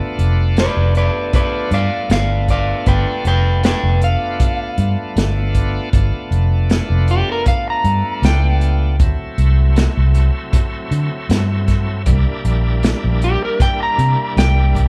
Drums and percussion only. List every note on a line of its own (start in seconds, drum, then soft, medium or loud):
0.19 closed hi-hat medium
0.57 snare loud
0.57 closed hi-hat medium
0.95 closed hi-hat medium
1.33 kick loud
1.33 closed hi-hat medium
1.71 closed hi-hat medium
2.10 snare loud
2.10 closed hi-hat medium
2.48 kick medium
2.48 closed hi-hat medium
2.86 kick loud
2.86 closed hi-hat medium
3.25 closed hi-hat medium
3.63 snare loud
3.63 closed hi-hat medium
4.02 closed hi-hat medium
4.40 kick loud
4.40 closed hi-hat medium
4.78 closed hi-hat medium
5.17 snare loud
5.17 closed hi-hat medium
5.55 kick medium
5.55 closed hi-hat medium
5.93 kick loud
5.93 closed hi-hat medium
6.32 closed hi-hat medium
6.70 snare loud
6.70 closed hi-hat medium
7.08 closed hi-hat medium
7.46 kick loud
7.46 closed hi-hat medium
7.84 closed hi-hat medium
8.23 snare loud
8.23 closed hi-hat medium
8.61 closed hi-hat medium
9.00 kick loud
9.00 closed hi-hat medium
9.38 closed hi-hat medium
9.76 snare loud
9.76 closed hi-hat medium
10.15 closed hi-hat medium
10.53 kick loud
10.53 closed hi-hat medium
10.92 closed hi-hat medium
11.30 snare loud
11.30 closed hi-hat medium
11.68 kick medium
11.68 snare soft
11.68 closed hi-hat medium
12.06 kick loud
12.06 closed hi-hat medium
12.45 closed hi-hat medium
12.83 snare loud
12.83 closed hi-hat medium
13.22 closed hi-hat medium
13.60 kick loud
13.60 closed hi-hat medium
13.99 closed hi-hat medium
14.37 snare loud
14.37 closed hi-hat medium
14.75 kick medium
14.75 closed hi-hat medium